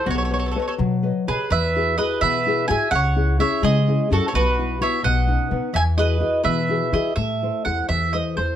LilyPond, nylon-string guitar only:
\new Staff \with { instrumentName = "Nylon-string guitar" } { \time 6/8 \key e \major \tempo 4. = 84 b8 <b' cis'' dis''>8 <b' cis'' dis''>8 fis8 <b' cis'' dis''>8 <b' cis'' dis''>8 | e8 <e' fis' gis'>8 <e' fis' gis'>8 b,8 <e' fis' gis'>8 <e' fis' gis'>8 | cis8 <cis' e' gis'>8 <cis' e' gis'>8 gis8 <cis' e' gis'>8 <cis' e' gis'>8 | b,8 <b e' fis'>8 <b e' fis'>8 b,8 <b cis' dis'>8 <b cis' dis'>8 |
e8 <e' fis' gis'>8 <e' fis' gis'>8 b,8 <e' fis' gis'>8 <e' fis' gis'>8 | \key a \dorian a8 <e' a' c''>8 <e' a' c''>8 e8 <e' a' c''>8 <e' a' c''>8 | }